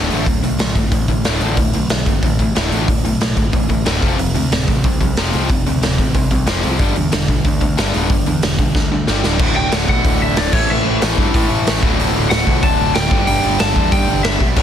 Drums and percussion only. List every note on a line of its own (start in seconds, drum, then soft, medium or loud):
0.10 open hi-hat medium
0.26 kick loud
0.26 open hi-hat medium
0.44 open hi-hat medium
0.59 snare loud
0.59 open hi-hat medium
0.75 kick medium
0.75 open hi-hat medium
0.92 kick loud
0.92 open hi-hat medium
1.08 kick medium
1.08 open hi-hat medium
1.24 snare loud
1.24 open hi-hat medium
1.40 open hi-hat medium
1.57 kick loud
1.57 open hi-hat medium
1.73 open hi-hat medium
1.90 snare loud
1.90 open hi-hat medium
2.06 kick medium
2.06 open hi-hat medium
2.23 kick loud
2.23 open hi-hat medium
2.39 kick medium
2.39 open hi-hat medium
2.56 snare loud
2.56 open hi-hat medium
2.72 open hi-hat medium
2.88 kick loud
2.88 open hi-hat medium
3.05 open hi-hat medium
3.21 snare loud
3.21 open hi-hat medium
3.37 kick medium
3.37 open hi-hat medium
3.53 kick loud
3.53 open hi-hat medium
3.70 kick medium
3.70 open hi-hat soft
3.86 snare loud
3.86 open hi-hat medium
4.02 kick loud
4.02 open hi-hat medium
4.19 open hi-hat medium
4.35 open hi-hat soft
4.52 snare loud
4.52 open hi-hat medium
4.68 kick medium
4.68 open hi-hat soft
4.84 kick loud
4.84 open hi-hat medium
5.01 kick medium
5.01 open hi-hat medium
5.17 snare loud
5.17 open hi-hat medium
5.33 open hi-hat medium
5.50 kick loud
5.50 open hi-hat medium
5.66 open hi-hat medium
5.83 snare loud
5.83 open hi-hat medium
5.98 kick medium
5.98 open hi-hat medium
6.15 kick loud
6.15 open hi-hat medium
6.31 kick medium
6.31 open hi-hat medium
6.47 snare loud
6.47 open hi-hat medium
6.63 open hi-hat medium
6.79 kick loud
6.79 open hi-hat medium
6.96 open hi-hat medium
7.12 snare loud
7.12 open hi-hat medium
7.28 kick medium
7.28 open hi-hat medium
7.45 kick loud
7.45 open hi-hat medium
7.61 kick medium
7.61 open hi-hat medium
7.78 snare loud
7.78 open hi-hat medium
7.94 open hi-hat medium
8.10 kick loud
8.10 open hi-hat medium
8.26 open hi-hat medium
8.42 snare loud
8.42 open hi-hat medium
8.59 kick medium
8.59 open hi-hat medium
8.75 kick loud
8.75 snare medium
9.08 snare medium
9.24 snare medium
9.39 kick loud
9.39 crash loud
9.72 snare loud
9.72 open hi-hat medium
9.88 kick medium
10.05 kick loud
10.05 open hi-hat medium
10.36 snare loud
10.36 open hi-hat medium
10.53 kick loud
10.53 crash loud
11.02 snare loud
11.02 open hi-hat medium
11.18 kick medium
11.34 kick loud
11.34 open hi-hat medium
11.67 snare loud
11.67 open hi-hat medium
11.83 kick loud
12.00 open hi-hat medium
12.31 snare loud
12.31 open hi-hat medium
12.47 kick medium
12.63 kick loud
12.63 open hi-hat medium
12.95 snare loud
12.95 open hi-hat medium
13.11 kick loud
13.27 open hi-hat medium
13.59 snare loud
13.59 open hi-hat medium
13.76 kick medium
13.92 kick loud
13.92 open hi-hat medium
14.24 snare loud
14.24 open hi-hat medium
14.40 kick medium
14.56 kick loud
14.56 crash loud